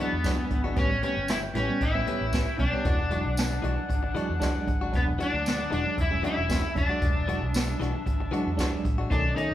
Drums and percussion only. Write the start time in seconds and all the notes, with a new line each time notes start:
0.24 kick, snare, closed hi-hat, tambourine
0.51 kick, closed hi-hat
0.76 kick, closed hi-hat
1.03 closed hi-hat
1.28 snare, closed hi-hat, tambourine
1.55 snare, closed hi-hat
1.81 kick, closed hi-hat
2.07 closed hi-hat
2.33 kick, snare, closed hi-hat, tambourine
2.59 kick, closed hi-hat
2.85 kick, closed hi-hat
3.11 closed hi-hat
3.37 snare, closed hi-hat, tambourine
3.64 closed hi-hat
3.90 kick, closed hi-hat
4.16 closed hi-hat
4.42 kick, snare, closed hi-hat, tambourine
4.67 kick, closed hi-hat
4.94 kick, closed hi-hat
5.20 closed hi-hat
5.46 snare, closed hi-hat, tambourine
5.72 closed hi-hat
5.98 kick, closed hi-hat
6.24 closed hi-hat
6.50 kick, snare, closed hi-hat, tambourine
6.76 kick, closed hi-hat
7.02 kick, closed hi-hat
7.28 closed hi-hat
7.54 snare, closed hi-hat, tambourine
7.81 snare, closed hi-hat
8.06 kick, closed hi-hat
8.33 closed hi-hat
8.59 kick, snare, closed hi-hat, tambourine
8.85 kick, closed hi-hat
9.11 kick, closed hi-hat
9.38 closed hi-hat